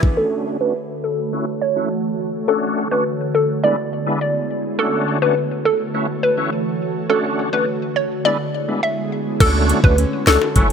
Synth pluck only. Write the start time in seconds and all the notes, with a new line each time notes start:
0.17 A4
0.61 B4
1.04 A4
1.62 C#5
2.48 A4
2.91 B4
3.35 A4
3.64 D5
4.21 D5
4.79 A4
5.22 B4
5.65 A4
6.23 B4
7.10 A4
7.53 B4
7.96 C#5
8.25 D5
8.83 E5
9.40 A4
9.84 B4
10.27 A4